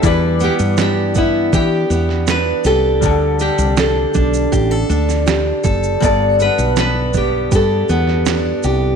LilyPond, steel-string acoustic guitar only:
\new Staff \with { instrumentName = "Steel-string acoustic guitar" } { \time 4/4 \key g \major \tempo 4 = 80 e8 b8 d'8 b8 g'8 b8 d'8 g'8 | d8 d'8 g'8 d'8 g'16 a'16 d'8 g'8 a'8 | g,8 b8 d'8 b8 g'8 b8 d'8 g'8 | }